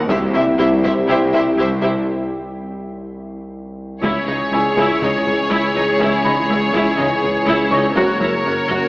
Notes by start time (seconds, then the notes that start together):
Already playing: D#1 D#3 C#5
0.08 C2 C3 G3 C4 E4 G4 C5 E5, taiko
0.34 C3 E4 G4 C5 E5
0.59 C2 E4 G4 C5 E5
0.84 C2 E4 G4 C5 E5, taiko
1.08 C2 C3 E4 G4 C5 E5 G5
1.33 C3 E4 G4 C5 E5
1.57 C2 E4 G4 C5 E5
1.81 C3 E4 G4 C5 E5
4.02 C#2 C#3 E3 G#3 C#4 E4 G#4 C#5, taiko
4.27 C#2 C#3 D#4
4.52 C#2 E4 G#4 G#5
4.77 C#2 E4, taiko
5.01 C#2 C#3 D#4, taiko low
5.27 C#2, taiko low
5.50 C#2 E4
5.75 C#2 D#4
5.99 C#2 E4, taiko
6.24 C#2 C#3 D#4 B5
6.49 C#2 E4
6.73 C#2 E4, taiko
6.97 C#2 C#3 D#4, taiko low
7.23 C#2, taiko low
7.46 C#2 E4
7.71 C#2 D#4 C#5 C#6
7.95 F#1 F#2 C#3 F#3 A#3 C#4 F#4 A#4 C#5, taiko
8.20 F#1 F#2 F#3 E4
8.45 F#1 F#2 F#4
8.69 F#1 F#2 F#4, taiko